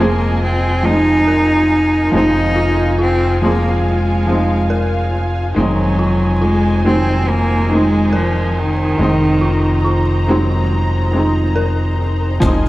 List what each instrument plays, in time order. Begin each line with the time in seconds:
Already playing: fingered electric bass F1, upright piano D#4, synth bell F4, string section F4 D#5 G#5
0.00 upright piano F3 G#3 C4 G#4, cello A#3
0.43 cello C4
0.83 upright piano F3 G#3 C4, cello D#4
0.89 upright piano D#4
1.27 synth bell A#4
2.12 fingered electric bass F1, upright piano F3 G#3 C4, cello D#4, string section F5
2.17 upright piano D#4
2.56 synth bell F4
2.98 cello C4, synth bell F4
3.42 upright piano F3 G#3 C4 G#4, cello A#3
3.87 cello G#3
4.26 upright piano F3 G#3
4.30 upright piano C4 D#4
4.70 synth bell A#4
5.54 fingered electric bass F1, upright piano D#3 G#3, cello F#3, string section D#4 C5 G#5
5.58 upright piano C4 D#4
5.99 synth bell F4
6.42 cello G#3, synth bell F4
6.84 upright piano D#3 F#3 G#3 C4, cello C4
7.29 cello A#3
7.69 upright piano D#3 G#3, cello G#3
7.73 upright piano C4 D#4
8.13 cello F3, synth bell A#4
8.59 cello D#3
8.97 fingered electric bass F1, upright piano D#3 G#3, string section A#5
9.01 upright piano C4 D#4
9.41 synth bell F4
9.84 synth bell F4
10.27 upright piano D#3 F#3 G#3 C4
11.11 upright piano D#3 G#3
11.15 upright piano C4 D#4
11.56 synth bell A#4
12.40 fingered electric bass F1, upright piano F3 G#3, string section F4 D#5 G#5, kick, closed hi-hat, shaker
12.44 upright piano C4 D#4